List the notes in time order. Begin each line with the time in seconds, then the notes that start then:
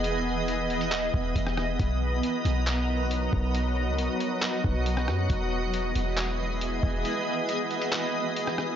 Already playing: E1 E3 B3 G#4 D#5
0.04 closed hi-hat
0.48 closed hi-hat
0.70 closed hi-hat
0.81 closed hi-hat
0.92 clap, closed hi-hat
1.14 E1, kick
1.36 E1, kick, closed hi-hat
1.47 cross-stick
1.57 cross-stick
1.79 B1 F#3 D#4 A#4 B4 A#5, kick, closed hi-hat
2.23 closed hi-hat
2.45 B1, closed hi-hat
2.67 clap, closed hi-hat
3.11 closed hi-hat
3.33 B1, kick
3.55 F#4, closed hi-hat
3.88 C#2
3.98 B1, closed hi-hat
4.20 closed hi-hat
4.42 clap, closed hi-hat
4.64 B1, kick
4.86 closed hi-hat
4.97 cross-stick
5.08 F#2, cross-stick
5.30 E1 E3 G#3 B3 E4 G#4 D#5, kick, closed hi-hat
5.74 closed hi-hat
5.95 E1, closed hi-hat
6.17 clap, closed hi-hat
6.61 closed hi-hat
6.83 E1, kick
7.05 F#4, closed hi-hat
7.49 closed hi-hat
7.71 closed hi-hat
7.82 closed hi-hat
7.92 clap, closed hi-hat
8.36 closed hi-hat
8.47 cross-stick
8.58 cross-stick